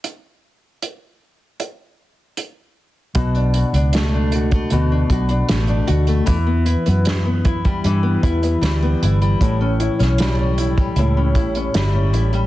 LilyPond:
<<
  \new Staff \with { instrumentName = "Nylon-string guitar" } { \time 4/4 \key b \minor \tempo 4 = 77 r1 | <b, fis'>16 d'16 fis'16 d'16 a16 d'16 fis'16 a16 <b, fis'>16 d'16 fis'16 d'16 a16 d'16 fis'16 a16 | <e e'>16 b16 e'16 b8 b16 e'16 g16 <e e'>16 b16 e'16 b16 g16 b16 e'16 g16 | <a, e'>16 cis'16 e'16 cis'16 g16 cis'16 e'16 g16 <a, e'>16 cis'16 e'16 cis'16 g16 cis'16 e'16 g16 | }
  \new Staff \with { instrumentName = "Fingered electric bass" } { \clef bass \time 4/4 \key b \minor r1 | b,,8. cis,4~ cis,16 d,8 b,,8 a,,8 d,8 | e,8. fis,4~ fis,16 g,8 e,8 d,8 g,,8 | a,,8. b,,4~ b,,16 cis,8 a,,8 g,,8 a,,8 | }
  \new DrumStaff \with { instrumentName = "Drums" } \drummode { \time 4/4 hh4 hh4 hh4 hh4 | <hh bd>16 hh16 hh16 hh16 <hh sn>8 hh16 <hh bd>16 hh8 <hh bd>16 hh16 <hh sn>16 hh16 hh16 hh16 | <hh bd>8 hh16 hh16 <hh sn>8 <hh bd>16 <hh bd>16 hh8 <hh bd>16 hh16 <hh sn>16 hh16 hh16 hh16 | <hh bd>8 hh16 <hh sn>16 <hh sn>8 hh16 <hh bd>16 hh8 <hh bd>16 hh16 <hh sn>8 hh16 hh16 | }
>>